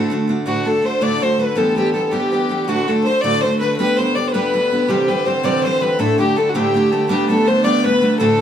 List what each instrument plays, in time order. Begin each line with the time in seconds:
Already playing: steel-string acoustic guitar D2 A2 A3 D4 F#4, accordion D3, fiddle A4
0.10 steel-string acoustic guitar D3 A3 D4 F#4
0.28 steel-string acoustic guitar D3 A3 D4 F#4
0.46 steel-string acoustic guitar D2 A2 D3 A3 D4 F#4, accordion D3, fiddle F#4
0.65 steel-string acoustic guitar D3 A3 D4 F#4, fiddle A4
0.82 steel-string acoustic guitar D3 A3 D4 F#4, fiddle C5
1.01 steel-string acoustic guitar D2 A2 D3 A3 D4 F#4, fiddle D5
1.20 steel-string acoustic guitar D3 A3 D4 F#4, fiddle C5
1.38 steel-string acoustic guitar D3 A3 D4 F#4, fiddle B4
1.56 steel-string acoustic guitar E3 G3 B3 G4, fiddle A4
1.76 steel-string acoustic guitar E3 G3 B3 G4, fiddle G4
1.93 steel-string acoustic guitar E3 G3 B3 G4, fiddle A4
2.05 fiddle A4
2.11 steel-string acoustic guitar E3 G3 B3 G4, fiddle G4
2.32 steel-string acoustic guitar E3 G3 B3 G4
2.49 steel-string acoustic guitar E3 G3 B3 G4
2.66 steel-string acoustic guitar D2 A2 D3 A3 D4 F#4, fiddle F#4
2.87 steel-string acoustic guitar D3 A3 D4 F#4, fiddle A4
3.04 steel-string acoustic guitar D3 A3 D4, fiddle C5
3.08 steel-string acoustic guitar F#4
3.21 steel-string acoustic guitar D2 A2 D3 A3 D4, fiddle D5
3.25 steel-string acoustic guitar F#4
3.41 steel-string acoustic guitar D3 A3, fiddle C5
3.45 steel-string acoustic guitar D4 F#4
3.59 steel-string acoustic guitar D3 A3 D4, fiddle B4
3.63 steel-string acoustic guitar F#4
3.76 steel-string acoustic guitar G3 B3 D4, fiddle B4
3.81 steel-string acoustic guitar G4
3.97 steel-string acoustic guitar G3 B3 D4 G4, fiddle C5
4.15 steel-string acoustic guitar G3 B3 D4 G4, fiddle D5
4.27 fiddle C5
4.33 steel-string acoustic guitar G3 B3 D4 G4, fiddle B4
4.54 steel-string acoustic guitar G3 B3 D4 G4
4.72 steel-string acoustic guitar G3 B3 D4 G4
4.88 steel-string acoustic guitar C3 E3 G3 C4 G4, accordion D3, fiddle G4
5.08 steel-string acoustic guitar E3 G3 C4 G4, fiddle B4
5.25 steel-string acoustic guitar E3 G3 C4 G4, fiddle C5
5.43 steel-string acoustic guitar C3 E3 G3 C4 G4, fiddle D5
5.63 steel-string acoustic guitar E3 G3 C4 G4, fiddle C5
5.81 steel-string acoustic guitar E3 G3 C4 G4, fiddle B4
5.99 steel-string acoustic guitar D2 A2 D3 A3 D4 E4, fiddle A4
6.18 steel-string acoustic guitar D3 A3 D4 E4, fiddle G4
6.36 steel-string acoustic guitar D3 A3 D4 E4, fiddle A4
6.49 fiddle F#4
6.54 steel-string acoustic guitar D2 A2 D3 A3 D4 E4, fiddle G4
6.74 steel-string acoustic guitar D3 A3 D4 E4
6.92 steel-string acoustic guitar D3 A3 D4 E4, fiddle A4
7.09 steel-string acoustic guitar G3 A3 B3 D4, fiddle G4
7.29 steel-string acoustic guitar G3 A3 B3 D4, fiddle A4
7.47 steel-string acoustic guitar G3 A3 B3 D4, fiddle C5
7.64 steel-string acoustic guitar G3 A3 B3 D4, fiddle D5
7.84 steel-string acoustic guitar G3 A3 B3 D4, fiddle B4
8.02 steel-string acoustic guitar G3 A3 B3 D4
8.19 steel-string acoustic guitar D2 A2 D3 A3 D4 F#4, fiddle A4